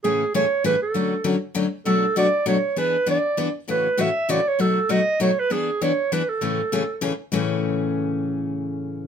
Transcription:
X:1
M:3/4
L:1/8
Q:"Swing" 1/4=198
K:A
V:1 name="Clarinet"
G2 c2 B A- | A3 z3 | A2 d2 c2 | B2 d3 z |
B2 e2 d c | A2 ^d2 c B | G2 c2 B A- | A4 z2 |
z6 | z6 |]
V:2 name="Steel-string acoustic guitar"
[A,,C,E,A,CG] z [A,,C,E,A,CG] z [A,,C,E,A,CG] z | [D,F,A,CF] z [D,F,A,CF] z [D,F,A,CF] z | [B,,F,A,DF] z [B,,F,A,DF] z [B,,F,A,DF] z | [E,B,DG] z [E,B,DG] z [E,B,DG] z |
[A,,C,E,A,CF] z [A,,C,E,A,CF] z [A,,C,E,A,CF] z | [B,,F,A,^DF] z [B,,F,A,DF] z [B,,F,A,DF] z | [E,B,DG] z [E,B,DG] z [E,B,DG] z | [A,,C,E,A,CG] z [A,,C,E,A,CG] z [A,,C,E,A,CG] z |
[A,,C,E,A,CG]6- | [A,,C,E,A,CG]6 |]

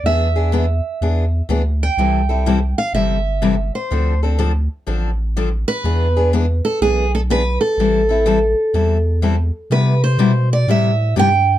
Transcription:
X:1
M:4/4
L:1/8
Q:"Swing" 1/4=124
K:C
V:1 name="Steel-string acoustic guitar"
e6 z g- | g3 f e3 c- | c z6 B- | B2 z A ^G A B A- |
A6 z2 | B c2 d e2 g2 |]
V:2 name="Steel-string acoustic guitar"
[E,B,D^G] [B,DG] [E,B,DG] z [E,B,DG] z [E,B,DG] z | [C,E,G,CEA] [G,CEA] [C,E,G,CEA] z [C,E,G,CEA] z [C,E,G,CEA] z | [D,F,CDA] [CDA] [D,F,CDA] z [D,F,CDA] z [D,F,CDA] z | [E,B,D^G] [B,DG] [E,B,DG] z [E,B,DG] z [E,B,DG] z |
[E,G,CEA] [CEA] [E,G,CEA] z [E,G,CEA] z [E,G,CEA] z | [C,G,B,EG] z [C,G,B,EG] z [C,G,B,EG] z [C,G,B,EG] z |]
V:3 name="Sub bass" clef=bass
E,,4 E,,2 D,,2 | C,,4 G,,,4 | D,,4 A,,,4 | E,,4 B,,,4 |
A,,,4 E,,4 | C,2 B,,2 A,,2 G,,2 |]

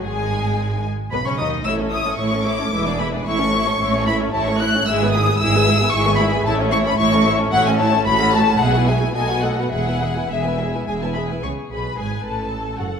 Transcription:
X:1
M:3/4
L:1/16
Q:1/4=111
K:Alyd
V:1 name="Violin section"
g6 z2 b c' d'2 | e'2 d'2 c'2 =d'4 b2 | c'6 b2 a c' f'2 | e'2 d'2 e'4 c'2 b2 |
a2 c' b c'2 z2 f g a2 | b2 a2 f2 g2 g2 f2 | f4 e4 g a b2 | c'2 b2 g2 a4 f2 |]
V:2 name="Violin section"
G6 z2 B c d2 | [ce] [Ac] [ce] [Ac] [ce] [Ac] [ce] [Ac] [Be] [G=d] [Be] [Gd] | [ce] [Ac] [ce] [Ac] [ce] [Ac] [ce] [Ac] [ce] [Ac] [ce] [Ac] | [Ge] [Bg] [Ge] [Bg] [Ge] [Bg] [Ge] [Bg] [Ge] [Bg] [Ge] [Bg] |
[ce] [Ac] [ce] [Ac] [ce] [Ac] [ce] [Ac] [ce] [Ac] [ce] [Ac] | [Fc] [Af] [Fc] [Af] [Ge] [Bg] [Ge] [Bg] [Ad] [Bf] [Ad] [Bf] | [Ge] [Bg] [Ge] [Bg] [Ge] [Bg] [Ge] [Bg] [Ge] [Bg] [Ge] [Bg] | c2 B2 G2 A4 F2 |]
V:3 name="Viola section"
G,6 z2 B, C D2 | [A,E] C [A,E] C [A,E] C [A,E] C [G,E] [B,=D] [G,E] [B,D] | [A,E] C [A,E] C [A,E] C [A,E] C [A,E] C [A,E] C | [G,E] [B,G] [G,E] [B,G] [G,E] [B,G] [G,E] [B,G] [G,E] [B,G] [G,E] [B,G] |
[A,E] C [A,E] C [A,E] C [A,E] C [A,E] C [A,E] C | [A,F] [CA] [A,F] [CA] [G,G] [B,E] [G,G] [B,E] [A,A] [B,F] [A,A] [B,F] | [G,G] [B,E] [G,G] [B,E] [G,G] [B,E] [G,G] [B,E] [G,G] [B,E] [G,G] [B,E] | G4 B4 A4 |]
V:4 name="Cello section" clef=bass
G,,6 z2 B,, C, D,2 | A,,4 A,,4 E,,4 | A,,4 A,,4 A,,4 | G,,4 G,,4 G,,4 |
A,,4 A,,4 A,,4 | A,,4 B,,4 B,,4 | E,,4 E,,4 E,,4 | C,2 B,,2 G,,2 A,,4 F,,2 |]
V:5 name="Double bass section" clef=bass
G,,,6 z2 B,,, z D,,2 | A,,,4 A,,,4 E,,,4 | A,,,4 A,,,4 A,,,4 | G,,,4 G,,,4 G,,,4 |
A,,,4 A,,,4 A,,,4 | A,,,4 B,,,4 B,,,4 | E,,,4 E,,,4 E,,,4 | C,,2 B,,,2 G,,,2 A,,,4 F,,,2 |]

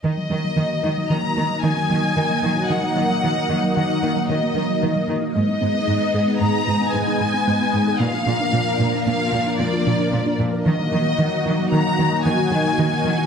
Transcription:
X:1
M:5/4
L:1/16
Q:1/4=113
K:Ebm
V:1 name="Violin section"
e8 b4 a8 | g8 g4 e6 z2 | e8 b4 a8 | f8 f4 =d6 z2 |
e8 b4 a8 |]
V:2 name="Analog synth pad"
[G,B,Ee]16- [G,B,Ee]4- | [G,B,Ee]16- [G,B,Ee]4 | [A,CEe]16- [A,CEe]4 | [F,B,=DB]16- [F,B,DB]4 |
[G,B,EG]16- [G,B,EG]4 |]
V:3 name="Synth arpeggio sound" clef=bass
E, G, G, G, E, z E G, E, z B, G, E, B, G, G, E, G, z E | E, G, G, G, E, z E G, E, z B, G, E, B, G, G, E, G, z E | A, C C C A, z A C A, z E C A, E C C A, C z A | B, =D D D B, z B D B, z F D B, F D D B, D z B |
E, G, G, G, E, z E G, E, z B, G, E, B, G, G, E, G, z E |]
V:4 name="Cello section" clef=bass
E,2 E,2 E,2 E,2 E,2 E,2 E,2 E,2 E,2 E,2 | E,2 E,2 E,2 E,2 E,2 E,2 E,2 E,2 E,2 E,2 | A,,2 A,,2 A,,2 A,,2 A,,2 A,,2 A,,2 A,,2 A,,2 A,,2 | B,,2 B,,2 B,,2 B,,2 B,,2 B,,2 B,,2 B,,2 B,,2 B,,2 |
E,2 E,2 E,2 E,2 E,2 E,2 E,2 E,2 E,2 E,2 |]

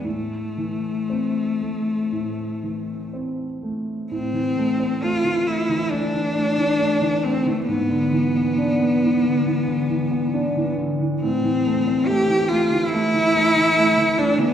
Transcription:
X:1
M:4/4
L:1/16
Q:1/4=68
K:Am
V:1 name="Cello"
A,12 z4 | C4 F2 E2 D6 C A, | B,12- B,2 z2 | C4 G2 F2 E6 D B, |]
V:2 name="Grand piano" clef=bass
A,,2 E,2 C2 A,2 A,,2 E,2 C2 A,2 | A,, E, A, C A, E, A, E, A, E, A, E, A, E, A, E, | ^G,, D, E, B, D B, E, D, E, D, E, B, D E, D, E, | A,, E, A, C A, E, A, E, A, E, A, E, A, E, A, E, |]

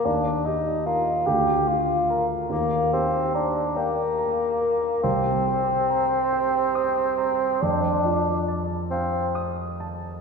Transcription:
X:1
M:6/8
L:1/8
Q:3/8=47
K:Eblyd
V:1 name="Grand piano"
E,, G [Bb] D,, F [Bb] | E,, G b g b B | [K:Fmix] C,, G b g e' b | F,, F a f e' a |]
V:2 name="Bassoon"
D E F G F z | B, C D B,3 | [K:Fmix] C6 | D2 z C z2 |]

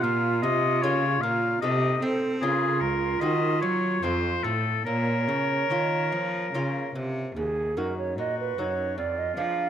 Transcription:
X:1
M:3/4
L:1/16
Q:1/4=74
K:Bbm
V:1 name="Oboe"
f2 e2 d2 f2 e2 z2 | A2 B2 e2 d2 c2 =A2 | B8- B2 z2 | [K:Ebm] z4 G4 F4 |]
V:2 name="Flute"
F8 =G2 =A2 | F8- F2 z2 | d8- d2 z2 | [K:Ebm] A2 B d e c d2 =d e f2 |]
V:3 name="Lute"
z4 [B,DF]4 [=A,E=A]4 | [B,DF]4 [B,CG]4 [=A,CF]4 | z4 [B,DF]4 [B,DF]4 | [K:Ebm] z2 [B,EG]4 [B,EG]2 z2 [B,=DA]2 |]
V:4 name="Lute" clef=bass
B,,2 C,2 D,2 B,,2 C,2 C2 | D,2 z2 E,2 G,2 F,,2 =A,,2 | B,,2 D,2 E,2 F,2 D,2 C,2 | [K:Ebm] E,,2 G,,2 B,,2 G,,2 F,,2 F,2 |]
V:5 name="Cello" clef=bass
B,,2 C,2 D,2 B,,2 C,2 C2 | D,2 D,,2 E,2 G,2 F,,2 =A,,2 | B,,2 D,2 E,2 F,2 D,2 C,2 | [K:Ebm] E,,2 G,,2 B,,2 G,,2 F,,2 F,2 |]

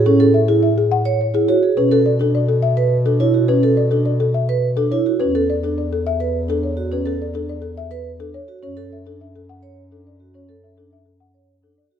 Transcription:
X:1
M:3/4
L:1/16
Q:1/4=105
K:Bdor
V:1 name="Marimba"
A G e G e G f z c G c z | B A d A d A e z2 A c z | B A d A d A e z2 A c z | B A d A d A e z2 A c z |
B A d A d A e z2 A c z | c A e A e A f z2 A d z | c A e A e A f z2 A d z |]
V:2 name="Vibraphone"
C A z E z3 c z E F G | C A z D z3 B z D E F | C A z D z3 B z D E F | C A z D z3 B z D z F |
C A z D z3 B z D z F | C A z D z3 c z D z F | C A z D z3 c z D z F |]
V:3 name="Bass clarinet" clef=bass
A,,12 | B,,12- | B,,12 | E,,12- |
E,,12 | F,,12- | F,,12 |]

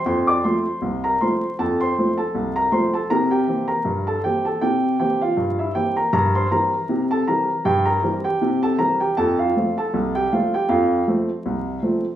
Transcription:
X:1
M:2/4
L:1/16
Q:"Swing 16ths" 1/4=79
K:F
V:1 name="Upright piano"
[cc'] [dd'] [cc']3 [Bb] [cc']2 | [Aa] [cc']2 [Aa]2 [Bb] [cc'] [Aa] | [Bb] [Gg]2 [Bb]2 [Aa] [Gg] [Aa] | [Gg]2 [Gg] [Ff]2 [Ee] [Gg] [Bb] |
[Bb] [cc'] [Bb]3 [Aa] [Bb]2 | [Gg] [Bb]2 [Gg]2 [Aa] [Bb] [Gg] | [Aa] [Ff]2 [Aa]2 [Gg] [Ff] [Gg] | [Ff]2 z6 |]
V:2 name="Upright piano" clef=bass
F,,2 [F,A,C]2 C,,2 [F,A,C]2 | F,,2 [F,A,C]2 C,,2 [F,A,C]2 | C,2 [E,B,C]2 G,,2 [E,B,C]2 | C,2 [E,B,C]2 G,,2 [E,B,C]2 |
G,,2 [E,G,C]2 C,2 [E,G,C]2 | G,,2 [E,G,C]2 C,2 [E,G,C]2 | F,,2 [F,A,C]2 C,,2 [F,A,C]2 | F,,2 [F,A,C]2 C,,2 [F,A,C]2 |]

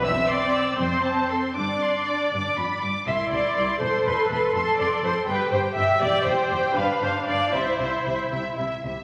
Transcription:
X:1
M:6/8
L:1/16
Q:3/8=80
K:C
V:1 name="Violin section"
e'2 c'2 e'2 c'2 a2 c'2 | d'2 c'2 d'2 d'2 b2 d'2 | c'2 c'2 c'2 c'2 c'2 c'2 | c'2 c'2 c'2 g2 g2 g2 |
g2 g2 g2 f2 f2 f2 | e2 e2 e2 e2 e2 e2 |]
V:2 name="Violin section"
e2 d4 c4 A2 | d8- d2 z2 | e2 d4 c2 B4 | A2 d2 c2 B2 c2 e2 |
d2 c4 B2 c2 d2 | c6 z6 |]
V:3 name="Viola section"
C12 | D8- D z3 | E6 A6- | A6 G6 |
G6 D6 | E8- E z3 |]
V:4 name="Cello section" clef=bass
E,,6 F,,6 | G,,6 G,,2 F,,2 G,,2 | C,,2 C,,2 C,,2 E,,2 E,,2 E,,2 | F,,2 F,,2 F,,2 G,,2 G,,2 G,,2 |
E,,2 E,,2 E,,2 G,,2 G,,2 G,,2 | C,2 C,2 C,2 C,2 C,2 C,2 |]
V:5 name="Double bass section" clef=bass
E,,,6 F,,,6 | G,,,6 G,,,6 | C,,2 C,,2 C,,2 E,,,2 E,,,2 E,,,2 | F,,,2 F,,,2 F,,,2 G,,,2 G,,,2 G,,,2 |
E,,,2 E,,,2 E,,,2 G,,,2 G,,,2 G,,,2 | C,,2 C,,2 C,,2 C,,2 C,,2 C,,2 |]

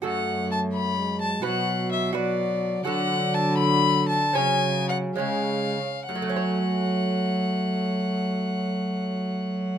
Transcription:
X:1
M:6/8
L:1/8
Q:3/8=76
K:F#m
V:1 name="Violin"
f2 a b2 a | f2 e d3 | f2 a b2 a | g2 f ^e3 |
f6- | f6 |]
V:2 name="Lute"
[FA]6 | [FB]3 [FB]3 | [FA]6 | [Cc]3 [G,Cc]3 |
[F,,F,A,Cc]6- | [F,,F,A,Cc]6 |]
V:3 name="Lute" clef=bass
F,,6 | B,,6 | D,6 | C,3 C,2 z |
z6 | z6 |]
V:4 name="Trombone" clef=bass
A,4 G,2 | F,3 F,3 | F,6 | F,3 G,2 z |
A,6- | A,6 |]
V:5 name="Cello" clef=bass
F,,6 | B,,6 | D,6 | C,3 C,2 z |
F,6- | F,6 |]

